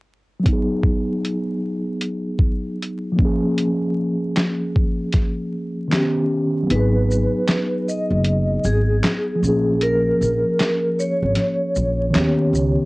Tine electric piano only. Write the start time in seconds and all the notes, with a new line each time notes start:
0.39 F#3 B3
0.48 D#4
0.53 G#4
3.12 F3
3.16 A#3
3.20 C#4
3.25 G#4
5.88 D#3 B3
5.92 C#4 G4
6.63 F#3
6.67 B3
6.71 D#4
6.76 G#4
9.35 F3
9.40 A#3
9.45 C#4 G#4
12.10 D#3 B3
12.16 C#4 G4